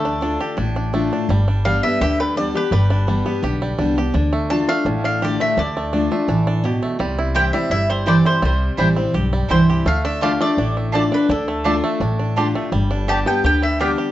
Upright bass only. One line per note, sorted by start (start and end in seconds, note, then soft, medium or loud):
0.00 0.36 D2 medium
0.58 1.08 A1 medium
1.29 1.79 G1 loud
2.01 2.50 D2 medium
2.71 3.21 G1 medium
3.43 3.73 B1 medium
3.79 4.09 C2 medium
4.14 4.64 D2 medium
4.85 5.35 A1 medium
5.57 6.07 D2 medium
6.28 6.78 A1 medium
6.99 7.49 C2 medium
7.70 8.21 G1 medium
8.42 8.68 C2 medium
8.78 9.09 A1 medium
9.14 9.44 B1 medium
9.50 9.80 C2 medium
9.85 10.36 D2 loud
10.57 11.08 A1 medium
11.29 11.79 D2 medium
12.00 12.51 A1 medium
12.72 13.22 G1 medium
13.44 13.94 D2 medium